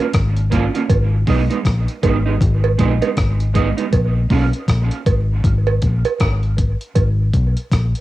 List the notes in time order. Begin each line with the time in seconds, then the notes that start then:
0.00 A#3
0.13 G#1, kick, cross-stick, closed hi-hat
0.36 closed hi-hat
0.51 A#3 C#4 F4, kick, closed hi-hat
0.74 A#3 C#4 F4, closed hi-hat
0.89 G#1, kick, closed hi-hat, cowbell
1.27 B1 G#3 B3 D#4, kick, open hi-hat
1.50 G#3 B3 D#4, closed hi-hat
1.65 A#1, kick, cross-stick, closed hi-hat
1.88 closed hi-hat
2.03 G#1 G#3 B3 D#4, kick, closed hi-hat, cowbell
2.25 G#3 B3 D#4
2.41 G#1, kick, closed hi-hat
2.64 cowbell
2.78 A#1 G#3 B3 D#4, kick, closed hi-hat
3.01 G#3 B3 D#4, closed hi-hat, cowbell
3.17 G#1, kick, cross-stick, closed hi-hat
3.40 closed hi-hat
3.54 G#3 B3 D#4, kick, closed hi-hat
3.77 G#3 B3 D#4, closed hi-hat
3.93 A#1, kick, closed hi-hat, cowbell
4.30 B1 A#3 C#4 F4, kick, open hi-hat
4.53 closed hi-hat
4.68 A#1, kick, cross-stick, closed hi-hat
4.91 closed hi-hat
5.06 G#1, kick, closed hi-hat, cowbell
5.44 G#1, kick, closed hi-hat
5.67 cowbell
5.82 A#1, kick, closed hi-hat
6.05 closed hi-hat, cowbell
6.20 G#1, kick, cross-stick, closed hi-hat
6.43 closed hi-hat
6.58 kick, closed hi-hat
6.81 closed hi-hat
6.95 G#1, kick, closed hi-hat, cowbell
7.34 B1, kick, closed hi-hat
7.57 closed hi-hat
7.72 A#1, kick, cross-stick, closed hi-hat
7.95 closed hi-hat